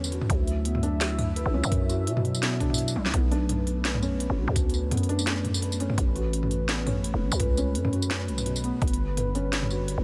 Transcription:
0.00 0.20 E2 medium
0.00 0.27 D3 medium
0.00 0.27 G3 medium
0.00 0.32 B3 medium
0.00 0.10 C#4 loud
0.00 0.31 D4 loud
0.00 0.12 F#4 medium
0.00 0.26 B4 medium
0.00 0.32 B4 medium
0.00 tambourine medium
0.12 0.29 F#4 medium
0.12 closed hi-hat soft
0.22 mid tom medium
0.30 1.45 D2 loud
0.30 3.11 F#3 medium
0.30 3.11 E4 medium
0.30 3.11 E5 medium
0.30 kick loud
0.30 closed hi-hat medium
0.47 closed hi-hat soft
0.65 0.82 B3 medium
0.65 closed hi-hat medium
0.75 mid tom medium
0.83 1.00 D4 loud
0.83 closed hi-hat soft
1.01 snare loud
1.01 closed hi-hat medium
1.19 mid tom medium
1.19 tambourine soft
1.36 1.52 B4 medium
1.36 closed hi-hat medium
1.46 1.55 A1 loud
1.54 1.63 D2 loud
1.54 1.88 C#4 loud
1.64 2.09 F#2 loud
1.64 tambourine medium
1.72 kick loud
1.72 closed hi-hat medium
1.72 mid tom medium
1.89 2.06 F#4 medium
1.89 closed hi-hat soft
1.89 tambourine soft
2.07 2.97 B2 medium
2.07 closed hi-hat medium
2.17 mid tom medium
2.25 closed hi-hat soft
2.35 tambourine medium
2.43 2.60 B3 medium
2.43 snare loud
2.43 closed hi-hat medium
2.60 2.77 D4 loud
2.60 kick medium
2.60 closed hi-hat soft
2.70 mid tom medium
2.74 tambourine medium
2.78 closed hi-hat medium
2.88 tambourine medium
2.96 3.07 A1 medium
2.96 high tom medium
3.05 3.13 D2 loud
3.05 snare medium
3.08 snare medium
3.11 4.29 B1 loud
3.11 8.78 A3 medium
3.11 5.95 B3 medium
3.11 3.31 B3 medium
3.11 10.04 B4 medium
3.11 kick loud
3.11 snare soft
3.11 closed hi-hat medium
3.31 3.48 D4 loud
3.31 closed hi-hat soft
3.49 closed hi-hat medium
3.49 mid tom medium
3.67 closed hi-hat soft
3.85 4.01 B4 medium
3.85 snare loud
3.85 closed hi-hat medium
3.94 mid tom medium
4.02 4.36 C#4 loud
4.02 tambourine soft
4.20 closed hi-hat medium
4.30 4.40 F#1 loud
4.38 4.47 B1 medium
4.38 4.55 F#4 medium
4.48 4.93 D2 loud
4.48 mid tom medium
4.56 kick loud
4.56 closed hi-hat medium
4.56 tambourine medium
4.70 closed hi-hat soft
4.74 tambourine soft
4.91 5.88 F#2 medium
4.91 5.08 B3 medium
4.91 closed hi-hat medium
4.91 mid tom medium
4.97 closed hi-hat medium
5.03 closed hi-hat soft
5.09 5.26 D4 loud
5.09 closed hi-hat soft
5.19 tambourine medium
5.27 snare loud
5.27 closed hi-hat medium
5.45 closed hi-hat soft
5.45 mid tom medium
5.54 tambourine medium
5.62 5.78 B4 medium
5.62 closed hi-hat medium
5.72 tambourine medium
5.80 5.98 C#4 loud
5.80 closed hi-hat soft
5.90 mid tom medium
5.98 7.13 A1 loud
5.98 8.79 C#4 medium
5.98 kick loud
5.98 closed hi-hat medium
6.16 6.33 F#4 medium
6.16 closed hi-hat soft
6.33 closed hi-hat medium
6.43 mid tom medium
6.51 closed hi-hat soft
6.69 6.86 B3 medium
6.69 snare loud
6.69 closed hi-hat medium
6.87 7.04 C#4 loud
6.87 mid tom medium
6.87 tambourine soft
7.04 closed hi-hat medium
7.14 7.24 E1 loud
7.22 7.31 A1 medium
7.32 7.77 C#2 loud
7.32 tambourine medium
7.40 7.56 B4 medium
7.40 kick loud
7.40 closed hi-hat medium
7.40 mid tom medium
7.57 7.91 C#4 loud
7.57 closed hi-hat soft
7.57 tambourine soft
7.75 8.30 F#2 loud
7.75 closed hi-hat medium
7.85 mid tom medium
7.93 8.10 F#4 medium
7.93 closed hi-hat soft
8.02 tambourine medium
8.11 snare loud
8.11 closed hi-hat medium
8.28 8.72 B1 loud
8.28 closed hi-hat soft
8.38 mid tom soft
8.38 tambourine medium
8.46 8.62 B2 medium
8.46 closed hi-hat medium
8.56 tambourine medium
8.64 8.75 B3 loud
8.64 closed hi-hat soft
8.82 9.97 G1 loud
8.82 10.04 D3 medium
8.82 10.04 G3 medium
8.82 kick loud
8.82 closed hi-hat soft
8.88 closed hi-hat soft
8.94 closed hi-hat medium
9.17 9.33 B4 medium
9.17 closed hi-hat medium
9.17 mid tom medium
9.35 9.69 C#4 loud
9.35 closed hi-hat soft
9.53 snare loud
9.53 closed hi-hat medium
9.62 mid tom medium
9.70 9.87 F#4 medium
9.70 tambourine soft
9.88 closed hi-hat medium
9.98 10.04 D1 loud

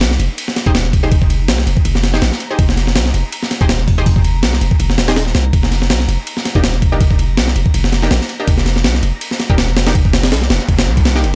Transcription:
0.00 0.18 C2 medium
0.00 11.35 A#5 medium
0.00 snare loud
0.00 ride medium
0.11 snare soft
0.20 0.29 F1 medium
0.20 ride medium
0.38 ride medium
0.48 snare soft
0.56 snare medium
0.56 ride medium
0.66 0.86 D#1 loud
0.66 0.71 D#4 medium
0.66 0.71 G4 medium
0.66 0.71 G#4 medium
0.66 0.71 C5 medium
0.66 kick medium
0.75 snare loud
0.75 ride medium
0.85 1.50 F1 loud
0.85 ride soft
0.93 kick medium
0.93 ride medium
1.03 1.11 D#4 medium
1.03 1.11 G4 medium
1.03 1.11 G#4 medium
1.03 1.11 C5 medium
1.12 kick loud
1.12 ride medium
1.22 kick medium
1.30 ride medium
1.48 1.65 C2 medium
1.48 snare loud
1.48 ride medium
1.58 snare medium
1.67 1.76 F1 medium
1.67 ride medium
1.77 kick medium
1.85 2.21 F1 loud
1.85 ride medium
1.95 snare medium
2.04 snare medium
2.04 ride medium
2.13 2.19 D#4 medium
2.13 2.19 G4 medium
2.13 2.19 G#4 medium
2.13 2.19 C5 medium
2.13 snare soft
2.22 2.31 A#1 medium
2.22 snare medium
2.22 ride medium
2.32 snare soft
2.40 ride medium
2.50 2.58 D#4 medium
2.50 2.58 G4 medium
2.50 2.58 G#4 medium
2.50 2.59 C5 medium
2.59 2.97 F1 loud
2.59 kick loud
2.59 ride medium
2.69 snare soft
2.77 snare soft
2.77 ride medium
2.87 snare soft
2.96 3.12 C2 medium
2.96 snare loud
2.96 ride medium
3.06 snare soft
3.14 3.23 F1 medium
3.14 ride medium
3.32 ride medium
3.43 snare soft
3.51 snare soft
3.51 ride medium
3.61 3.81 D#1 loud
3.61 3.66 D#4 medium
3.61 3.66 G4 medium
3.61 3.66 G#4 medium
3.61 3.66 C5 medium
3.61 kick loud
3.69 snare loud
3.69 ride medium
3.79 4.44 F1 loud
3.79 ride soft
3.88 kick medium
3.88 ride medium
3.98 4.06 D#4 medium
3.98 4.06 G4 medium
3.98 4.06 G#4 medium
3.98 4.06 C5 medium
4.06 kick loud
4.06 ride medium
4.16 kick medium
4.24 ride medium
4.43 4.60 C2 medium
4.43 snare loud
4.43 ride medium
4.53 snare medium
4.61 4.70 F1 medium
4.61 ride medium
4.71 kick medium
4.80 5.00 F1 loud
4.80 ride medium
4.90 snare soft
4.98 5.34 D#1 medium
4.98 snare loud
4.98 ride medium
5.08 5.13 D#4 medium
5.08 5.13 G4 medium
5.08 5.13 G#4 medium
5.08 5.13 C5 medium
5.08 snare loud
5.08 ride medium
5.16 snare loud
5.16 ride medium
5.26 snare soft
5.35 5.52 C2 medium
5.35 snare loud
5.35 ride medium
5.53 5.92 F1 loud
5.53 kick loud
5.53 ride medium
5.63 snare medium
5.72 snare soft
5.72 ride medium
5.82 snare medium
5.90 6.07 C2 medium
5.90 snare loud
5.90 ride medium
6.00 snare soft
6.08 6.17 F1 medium
6.08 ride medium
6.27 ride medium
6.37 snare soft
6.45 snare soft
6.45 ride medium
6.55 6.75 D#1 loud
6.55 6.60 A#3 medium
6.55 6.60 D4 medium
6.55 6.60 D#4 medium
6.55 6.60 G4 medium
6.55 kick medium
6.64 snare loud
6.64 ride medium
6.74 7.39 F1 loud
6.74 ride soft
6.82 kick medium
6.82 ride medium
6.92 7.00 A#3 medium
6.92 7.00 D4 medium
6.92 7.00 D#4 medium
6.92 7.00 G4 medium
7.01 kick loud
7.01 ride medium
7.11 kick medium
7.19 ride medium
7.37 7.54 C2 medium
7.37 snare loud
7.37 ride medium
7.48 snare medium
7.56 7.65 F1 medium
7.56 ride medium
7.66 kick medium
7.74 8.10 F1 medium
7.74 ride medium
7.84 snare medium
7.92 snare medium
7.92 ride medium
8.02 8.08 A#3 medium
8.02 8.08 D4 medium
8.02 8.08 D#4 medium
8.02 8.08 G4 medium
8.02 snare soft
8.11 8.20 A#1 medium
8.11 snare loud
8.11 ride medium
8.21 snare soft
8.29 ride medium
8.39 8.47 A#3 medium
8.39 8.48 D4 medium
8.39 8.48 D#4 medium
8.39 8.48 G4 medium
8.47 8.86 F1 loud
8.47 kick loud
8.47 ride medium
8.58 snare medium
8.66 snare soft
8.66 ride medium
8.76 snare medium
8.84 9.01 C2 medium
8.84 snare loud
8.84 ride medium
8.94 snare soft
9.03 9.12 F1 medium
9.03 ride medium
9.21 ride medium
9.31 snare soft
9.40 snare soft
9.40 ride medium
9.50 9.70 D#1 loud
9.50 9.55 A#3 medium
9.50 9.55 D4 medium
9.50 9.55 D#4 medium
9.50 9.55 G4 medium
9.50 kick loud
9.58 snare loud
9.58 ride medium
9.68 10.33 F1 loud
9.68 ride soft
9.77 snare loud
9.77 ride medium
9.87 9.95 A#3 medium
9.87 9.95 D4 medium
9.87 9.95 D#4 medium
9.87 9.95 G4 medium
9.87 snare loud
9.87 ride medium
9.95 kick loud
9.95 ride medium
9.95 noise sweep medium
10.05 kick medium
10.13 snare loud
10.13 ride medium
10.23 snare loud
10.23 ride medium
10.32 10.48 C2 medium
10.32 snare loud
10.32 ride medium
10.42 snare medium
10.50 10.59 F1 medium
10.50 snare loud
10.50 ride medium
10.60 ride soft
10.69 10.88 F1 loud
10.69 kick medium
10.69 ride medium
10.79 snare loud
10.79 ride medium
10.87 11.25 C2 loud
10.87 ride soft
10.97 kick medium
10.97 ride medium
11.05 snare loud
11.05 ride medium
11.15 11.21 A#3 medium
11.15 11.20 D4 medium
11.15 11.20 D#4 medium
11.15 11.21 G4 medium
11.15 snare soft
11.24 11.35 F1 medium
11.24 ride medium

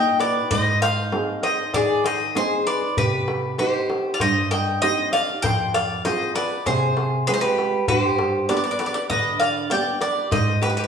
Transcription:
0.00 0.38 A#2 medium
0.00 0.39 D#4 soft
0.00 0.39 G4 soft
0.00 0.18 D#5 medium
0.00 0.18 G5 loud
0.19 0.49 B4 medium
0.19 0.49 D5 medium
0.19 darbuka tek medium
0.35 darbuka tek soft
0.51 1.11 G#2 medium
0.51 0.80 C5 medium
0.51 0.80 D#5 loud
0.51 darbuka dum medium
0.82 1.40 C5 medium
0.82 1.40 F5 medium
0.82 darbuka tek medium
1.12 1.62 C4 soft
1.12 1.62 D#4 soft
1.12 1.63 G#4 medium
1.12 darbuka tek medium
1.28 darbuka tek soft
1.43 1.72 C5 medium
1.43 1.74 D#5 medium
1.43 darbuka tek medium
1.74 2.34 D#3 medium
1.74 2.04 G#4 medium
1.74 2.03 D5 medium
1.74 darbuka tek medium
1.74 darbuka dum medium
2.04 2.34 C5 medium
2.04 2.37 D#5 medium
2.04 darbuka tek medium
2.20 darbuka tek soft
2.35 2.85 C4 soft
2.35 2.85 D#4 soft
2.35 2.65 G#4 medium
2.35 2.86 G#4 medium
2.35 2.65 C5 medium
2.35 darbuka tek medium
2.67 2.96 B4 medium
2.67 2.95 D5 medium
2.82 darbuka tek soft
2.97 3.57 C3 medium
2.97 3.56 G4 medium
2.97 3.59 B4 medium
2.97 darbuka dum medium
3.13 darbuka tek soft
3.28 darbuka tek medium
3.58 4.09 C4 soft
3.58 4.09 D#4 soft
3.58 4.10 G4 medium
3.58 4.09 G4 medium
3.58 4.10 C5 medium
3.58 darbuka tek medium
3.90 darbuka tek medium
4.05 darbuka tek soft
4.14 4.20 D5 medium
4.14 4.21 F5 medium
4.20 4.80 G2 medium
4.20 4.49 C5 medium
4.20 4.50 D#5 loud
4.20 darbuka tek medium
4.20 darbuka dum medium
4.51 4.80 D#5 medium
4.51 4.80 G5 medium
4.51 darbuka tek medium
4.82 5.31 C4 soft
4.82 5.31 D#4 soft
4.82 5.32 G4 medium
4.82 5.11 C5 medium
4.82 5.10 D#5 loud
4.82 darbuka tek medium
5.13 5.42 D5 medium
5.13 5.42 F5 medium
5.13 darbuka tek medium
5.28 darbuka tek soft
5.42 6.03 F2 medium
5.42 5.73 C5 medium
5.42 5.74 G5 loud
5.42 darbuka dum loud
5.59 darbuka tek soft
5.74 6.03 D5 medium
5.74 6.05 F5 medium
5.74 darbuka tek medium
6.05 6.54 C4 soft
6.05 6.54 F4 soft
6.05 6.54 G#4 soft
6.05 6.33 C5 medium
6.05 6.33 D#5 medium
6.05 darbuka tek medium
6.35 6.63 B4 medium
6.35 6.64 D5 medium
6.35 darbuka tek medium
6.51 darbuka tek soft
6.66 7.26 C3 medium
6.66 7.23 G#4 medium
6.66 7.23 C5 medium
6.66 darbuka tek medium
6.66 darbuka dum medium
6.97 darbuka tek medium
7.27 7.77 G#3 soft
7.27 7.76 C4 soft
7.27 7.77 F4 soft
7.27 7.32 G#4 medium
7.27 7.33 B4 loud
7.27 darbuka tek medium
7.33 7.40 G#4 medium
7.33 7.41 C5 medium
7.40 7.84 G4 medium
7.40 7.85 B4 medium
7.58 darbuka tek medium
7.73 darbuka tek soft
7.88 8.47 G2 medium
7.88 8.45 G4 medium
7.88 7.99 B4 medium
7.88 darbuka dum medium
7.99 8.51 C5 medium
8.04 darbuka tek soft
8.19 darbuka tek medium
8.48 8.97 B3 soft
8.48 8.98 D4 soft
8.48 8.98 G4 medium
8.48 8.56 B4 medium
8.48 8.55 D5 medium
8.48 darbuka tek medium
8.57 8.64 B4 medium
8.57 8.63 D5 medium
8.64 8.71 B4 medium
8.64 8.70 D5 medium
8.71 8.78 B4 soft
8.71 8.78 D5 medium
8.79 8.86 B4 medium
8.79 8.85 D5 medium
8.79 darbuka tek medium
8.86 8.94 B4 soft
8.86 8.93 D5 medium
8.94 9.01 B4 medium
8.94 9.01 D5 medium
8.94 darbuka tek soft
9.10 9.69 D3 medium
9.10 9.39 B4 medium
9.10 9.39 D#5 medium
9.10 darbuka tek medium
9.10 darbuka dum medium
9.40 9.69 D5 medium
9.40 9.68 F5 medium
9.40 darbuka tek medium
9.70 10.20 B3 medium
9.70 10.20 D4 soft
9.70 10.20 G4 medium
9.70 10.00 D5 medium
9.70 10.01 G5 loud
9.70 darbuka tek medium
10.01 10.29 B4 medium
10.01 10.30 D5 medium
10.01 darbuka tek medium
10.17 darbuka tek soft
10.31 10.87 G#2 medium
10.31 10.60 C5 medium
10.31 10.60 D#5 medium
10.31 darbuka dum loud
10.48 darbuka tek soft
10.62 10.69 G4 medium
10.62 10.68 B4 medium
10.62 darbuka tek medium
10.70 10.77 G4 medium
10.70 10.76 B4 medium
10.77 10.84 G4 medium
10.77 10.82 B4 medium
10.77 darbuka tek soft
10.84 10.87 B4 medium

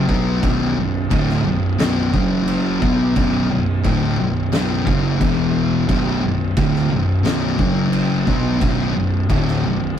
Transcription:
0.07 0.40 B1 medium
0.07 0.41 B2 medium
0.07 0.41 F#3 loud
0.07 0.42 B3 loud
0.07 kick loud
0.42 0.75 B0 loud
0.42 0.75 B1 medium
0.42 0.76 F#2 loud
0.42 0.76 B2 loud
0.42 kick loud
0.42 crash medium
0.76 1.08 B0 medium
0.76 1.04 B1 medium
0.76 1.04 F#2 medium
1.10 1.43 D1 loud
1.10 1.44 D2 medium
1.10 1.44 A2 loud
1.10 1.44 D3 loud
1.10 kick loud
1.10 crash medium
1.29 snare soft
1.44 1.77 B0 medium
1.44 1.72 B1 medium
1.44 1.72 F#2 medium
1.78 2.11 B0 loud
1.78 2.12 B1 loud
1.78 2.12 F#2 loud
1.78 2.12 B2 loud
1.78 snare loud
1.78 crash medium
2.14 2.78 F#1 medium
2.14 2.81 F#2 medium
2.14 2.81 C#3 loud
2.14 2.80 F#3 loud
2.14 kick loud
2.48 crash medium
2.81 3.13 B1 medium
2.81 3.15 B2 loud
2.81 3.15 F#3 medium
2.81 3.15 B3 loud
2.81 kick loud
3.16 3.48 B0 medium
3.16 3.48 B1 medium
3.16 3.49 F#2 loud
3.16 3.49 B2 loud
3.16 kick loud
3.16 crash medium
3.50 3.82 B0 medium
3.50 3.77 B1 medium
3.50 3.77 F#2 medium
3.83 4.16 D1 loud
3.83 4.17 D2 medium
3.83 4.17 A2 loud
3.83 4.17 D3 loud
3.83 kick loud
3.83 crash medium
4.18 4.50 B0 medium
4.18 4.45 B1 medium
4.18 4.45 F#2 medium
4.52 4.84 B0 medium
4.52 4.85 B1 medium
4.52 4.85 F#2 loud
4.52 4.86 B2 loud
4.52 snare loud
4.52 crash medium
4.86 5.18 F#1 medium
4.86 5.19 F#2 medium
4.86 5.19 C#3 loud
4.86 5.20 F#3 loud
4.86 kick loud
5.20 5.85 E1 medium
5.20 5.87 E2 medium
5.20 5.88 B2 medium
5.20 5.88 E3 loud
5.20 kick loud
5.20 crash medium
5.87 6.21 B0 medium
5.87 6.21 B1 loud
5.87 6.21 F#2 loud
5.87 6.22 B2 loud
5.87 kick loud
5.87 crash medium
6.22 6.54 B0 medium
6.22 6.50 B1 medium
6.22 6.50 F#2 medium
6.57 6.88 D1 loud
6.57 6.90 D2 medium
6.57 6.90 A2 loud
6.57 6.90 D3 loud
6.57 kick loud
6.57 crash medium
6.75 snare soft
6.90 7.22 B0 medium
6.90 7.18 B1 medium
6.90 7.18 F#2 medium
7.24 7.56 B0 loud
7.24 7.57 B1 loud
7.24 7.57 F#2 loud
7.24 7.58 B2 loud
7.24 snare loud
7.24 crash medium
7.58 8.23 F#1 medium
7.58 8.26 F#2 medium
7.58 8.26 C#3 loud
7.58 8.26 F#3 medium
7.58 kick loud
7.93 crash medium
8.27 8.59 B1 loud
8.27 8.60 B2 medium
8.27 8.60 F#3 medium
8.27 8.60 B3 loud
8.27 kick loud
8.61 8.93 B0 medium
8.61 8.94 B1 medium
8.61 8.94 F#2 loud
8.61 8.95 B2 loud
8.61 kick loud
8.61 crash medium
8.95 9.27 B0 medium
8.95 9.23 B1 medium
8.95 9.23 F#2 medium
9.29 9.61 D1 medium
9.29 9.62 D2 medium
9.29 9.63 A2 loud
9.29 9.63 D3 loud
9.29 kick loud
9.29 crash medium
9.47 snare soft
9.63 9.95 B0 medium
9.63 9.91 B1 medium
9.63 9.91 F#2 medium

